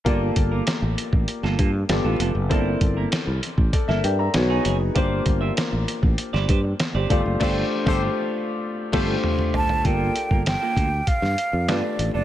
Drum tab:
CC |----------------|----------------|----------------|x---------x-----|
HH |x-x-x-x-x-x-x-x-|x-x-x-x-x-x-x-x-|x-x-x-x-x-x-x-x-|----------------|
SD |----o----o--o---|----o----o--o---|----o----o--o---|o--o------o-----|
T2 |----------------|----------------|----------------|------------oo--|
FT |----------------|----------------|----------------|--------------oo|
BD |o-o----o--o-----|o-o----oo-------|o-o----o--o---o-|o--o------o-----|

CC |----------------|
HH |x-x-x-x-x-x-x-x-|
SD |----o----o--o---|
T2 |----------------|
FT |----------------|
BD |o--o--o-o-------|